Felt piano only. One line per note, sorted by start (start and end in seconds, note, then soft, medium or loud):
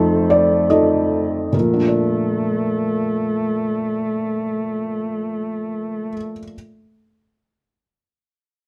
0.00 1.56 F2 soft
0.00 0.66 F3 soft
0.00 0.67 D#4 soft
0.00 0.67 A4 soft
0.00 0.26 C5 medium
0.30 0.67 D5 medium
0.70 1.49 F3 soft
0.70 1.49 D#4 soft
0.70 1.50 A4 soft
0.70 1.49 D#5 soft
1.52 6.09 A#2 soft
1.52 6.11 A#4 soft
1.59 6.16 F3 soft
1.74 6.30 D4 soft
1.81 6.37 F4 soft
1.87 6.44 D5 soft